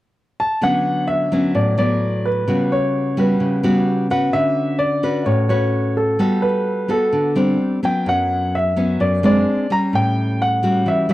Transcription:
0.40 A5
0.61 D3 F#3 B3 C#4 F#5
1.08 E5
1.32 F#3 B3 C#4
1.55 A2 D5
1.78 F#3 B3 D5
2.25 B4
2.48 C#3 G3 B3 F#4
2.72 C#5
3.17 G3 B3 F#4 B4
3.40 C#3
3.63 G3 B3 F#4
4.10 C#4 F#4 B4 F#5
4.33 D3 E5
4.79 D5
5.03 C#4 F#4 B4
5.26 A2 C#5
5.49 C#4 F#4 B4 C#5
5.97 A4
6.19 G3 B3 F#4 A4
6.42 B4
6.88 B3 F#4 A4
7.13 D3
7.35 G3 C4 D4
7.83 F#3 B3 C#4 G5
8.06 F#2 F#5
8.55 E5
8.76 F#3 B3 C#4
9.00 F#2 D5
9.23 G#3 C4 D4 D5
9.70 G3 C#4 A#5
9.93 A2 G5
10.42 F#5
10.63 G3 C#4 F#4
10.86 E3 E5
11.09 G3 C#4 F#4

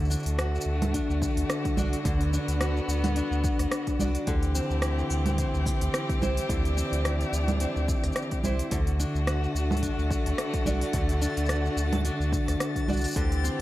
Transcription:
Already playing: D2 D3 A3 F#4
0.02 shaker
0.05 shaker
0.08 D4, shaker
0.11 shaker
0.19 shaker
0.23 D2, open hi-hat, shaker
0.27 shaker
0.38 F#4, cross-stick, open hi-hat, shaker
0.55 shaker
0.61 shaker
0.66 D2
0.82 open hi-hat, low conga, shaker
0.94 D4, kick, open hi-hat, shaker
1.09 D2, shaker
1.22 kick, shaker
1.37 D2, open hi-hat, shaker
1.50 cross-stick, open hi-hat, shaker
1.65 kick, open hi-hat, shaker
1.77 C2 D4 F#4 D5, low conga, shaker
1.93 open hi-hat, shaker
2.05 D2 D3 B3, kick, open hi-hat, shaker
2.21 open hi-hat, shaker
2.33 D4, shaker
2.48 D2, open hi-hat, shaker
2.61 F#4, cross-stick, open hi-hat, shaker
2.77 shaker
2.88 D2, shaker
3.04 open hi-hat, low conga, shaker
3.16 D4, open hi-hat, shaker
3.31 D2, shaker
3.44 kick, shaker
3.59 D2, cross-stick, open hi-hat, shaker
3.71 cross-stick, open hi-hat, shaker
3.87 kick, open hi-hat, shaker
3.99 C2 D4 F#4 D5, low conga, shaker
4.15 open hi-hat, shaker
4.27 D2 D3 E3 C4 G4, kick, open hi-hat, shaker
4.43 open hi-hat, shaker
4.55 C4, shaker
4.70 D2, shaker
4.82 E4, cross-stick, open hi-hat, shaker
4.99 shaker
5.10 D2, shaker
5.26 open hi-hat, low conga, shaker
5.38 C4, kick, open hi-hat, shaker
5.54 D2, shaker
5.66 kick, shaker
5.81 D2, open hi-hat, shaker
5.94 cross-stick, open hi-hat, shaker
6.09 kick, open hi-hat, shaker
6.21 C2 C4 E4 C5, low conga, shaker
6.37 open hi-hat, shaker
6.49 D2 D3 D4, kick, open hi-hat, shaker
6.65 open hi-hat, shaker
6.77 C4, shaker
6.92 D2, open hi-hat, shaker
7.05 E4, cross-stick, open hi-hat, shaker
7.21 open hi-hat, shaker
7.33 D2, shaker
7.48 open hi-hat, low conga, shaker
7.60 C4, open hi-hat, shaker
7.76 D2, shaker
7.88 kick, shaker
8.04 D2, cross-stick, open hi-hat, shaker
8.12 cross-stick, open hi-hat, shaker
8.17 shaker
8.31 kick, open hi-hat, shaker
8.44 C2 C4 E4 C5, low conga, shaker
8.59 open hi-hat, shaker
8.71 D2 D3 A3 F#4 A6, kick, open hi-hat, shaker
8.87 open hi-hat, shaker
9.00 D4, shaker
9.15 D2, shaker
9.27 F#4, cross-stick, open hi-hat, shaker
9.44 shaker
9.55 D2, shaker
9.71 low conga, shaker
9.77 open hi-hat
9.83 D4, kick, open hi-hat, shaker
9.98 D2, shaker
10.11 kick, shaker
10.26 D2, open hi-hat, shaker
10.38 cross-stick, open hi-hat
10.54 kick, open hi-hat, shaker
10.66 C2 D4 F#4 D5, low conga, shaker
10.81 open hi-hat, shaker
10.93 D2 D3, kick, open hi-hat, shaker
11.09 open hi-hat, shaker
11.22 D4, shaker
11.37 D2, open hi-hat, shaker
11.46 F#4, cross-stick, open hi-hat, shaker
11.50 shaker
11.55 shaker
11.66 shaker
11.76 D2, shaker
11.93 open hi-hat, low conga, shaker
12.05 D4, open hi-hat, shaker
12.20 D2, shaker
12.33 kick, shaker
12.48 D2, cross-stick, open hi-hat, shaker
12.60 cross-stick, open hi-hat, shaker
12.76 kick, open hi-hat, shaker
12.88 C2 D4 F#4 D5, low conga, shaker
12.93 shaker
12.97 shaker
13.01 open hi-hat, shaker
13.05 shaker
13.08 shaker
13.11 shaker
13.14 D2 D3 E3 C4 G4, kick, open hi-hat, shaker
13.17 shaker
13.32 open hi-hat, shaker
13.44 C4, shaker

